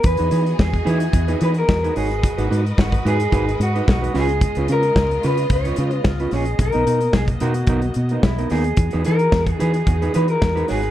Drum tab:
HH |xxxx-xxxxxxx-xox|xxxx-xxxxxxx-xox|xxxx-xxxxxxx-xox|xxxx-xxxxxxx-xox|
SD |----o-------o---|----o-------o-o-|----o-------o-o-|----o-------o-o-|
BD |o---oo--o---o---|o---oo--o---o---|o---o---o---o---|o---oo--o---o---|

HH |xxxx-xxxxxxx-xox|
SD |----o-------o-o-|
BD |o---oo--o---o---|